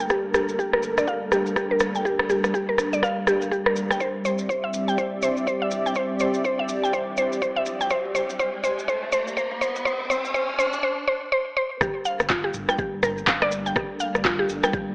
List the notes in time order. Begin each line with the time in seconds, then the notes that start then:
Already playing: G3 D4 A4 A#4
0.00 G5
0.10 G4, kick, cross-stick, mid tom, maracas
0.34 G4, cross-stick, maracas
0.49 maracas
0.59 G4, kick, maracas
0.73 A#4, cross-stick
0.83 mid tom, maracas
0.98 D5, cross-stick, maracas
1.08 F5, kick, mid tom, maracas
1.32 G4, cross-stick, maracas
1.46 mid tom, maracas
1.56 G4, kick, cross-stick, maracas
1.71 A#4
1.80 cross-stick, mid tom, maracas
1.95 G5, maracas
2.05 G4, kick, mid tom, maracas
2.19 cross-stick
2.30 G4, maracas
2.44 cross-stick, mid tom, maracas
2.54 G4, kick, maracas
2.69 A#4
2.78 cross-stick, mid tom, maracas
2.93 D5, maracas
3.03 F5, kick, cross-stick, mid tom, maracas
3.27 G4, cross-stick, maracas
3.42 maracas
3.51 G4, kick, maracas
3.66 A#4, cross-stick
3.76 mid tom, maracas
3.91 G5, cross-stick, maracas
4.00 C4 G4 C5 D5 E5, kick, mid tom, riser, maracas
4.25 C5, mid tom, maracas
4.38 maracas
4.49 C5, kick, mid tom, maracas
4.64 E5
4.74 mid tom, maracas
4.88 G5, maracas
4.98 C5, kick, mid tom, maracas
5.22 C5, mid tom, maracas
5.37 maracas
5.47 C5, kick, mid tom, maracas
5.62 E5
5.71 mid tom, maracas
5.86 G5, mid tom, maracas
5.95 C5, kick, mid tom, maracas
6.20 C5, mid tom, maracas
6.34 maracas
6.44 C5, kick, mid tom, maracas
6.59 E5
6.69 mid tom, maracas
6.84 G5, maracas
6.93 C5, kick, mid tom, maracas
7.17 C5, mid tom, maracas
7.32 mid tom, maracas
7.42 C5, kick, mid tom, maracas
7.56 E5
7.66 mid tom, maracas
7.81 G5, maracas
7.90 C5, kick, mid tom, maracas
8.05 mid tom
8.15 C5, mid tom, maracas
8.30 mid tom, maracas
8.39 C5, kick, mid tom, maracas
8.54 mid tom
8.64 C5, mid tom, maracas
8.78 mid tom, maracas
8.88 C5, kick, mid tom, maracas
9.03 mid tom
9.12 C5, mid tom, maracas
9.27 mid tom, maracas
9.37 C5, kick, mid tom, maracas
9.51 mid tom
9.61 C5, mid tom, maracas
9.76 mid tom, maracas
9.85 C5, kick, mid tom, maracas
9.93 mid tom
10.00 mid tom
10.05 mid tom
10.10 C5, mid tom, maracas
10.17 mid tom
10.24 mid tom, maracas
10.30 mid tom
10.34 C5, kick, mid tom, maracas
10.42 mid tom
10.49 mid tom
10.54 mid tom
10.59 C5, mid tom, maracas
10.66 mid tom
10.73 kick, mid tom, maracas
10.78 mid tom
10.83 C5
11.08 C5
11.32 C5
11.57 C5
11.81 G1 G3 D4 G4 A4 A#4, kick, cross-stick, maracas
12.05 F5, maracas
12.20 G1, cross-stick, maracas
12.30 F4, kick, clap, mid tom, maracas
12.44 G4
12.54 G1, mid tom, maracas
12.69 G5, cross-stick, maracas
12.78 G4, kick, maracas
12.93 G1
13.03 A#4, cross-stick, mid tom, maracas
13.18 maracas
13.27 F5, kick, clap, maracas
13.42 G1 D5, cross-stick
13.52 maracas
13.66 G5, maracas
13.76 G1 G4, kick, cross-stick, maracas
14.00 F5, maracas
14.15 G1, cross-stick, maracas
14.25 F4, kick, clap, mid tom, maracas
14.39 G4
14.49 G1, maracas
14.63 G5, cross-stick, maracas
14.73 G4, kick, maracas
14.88 G1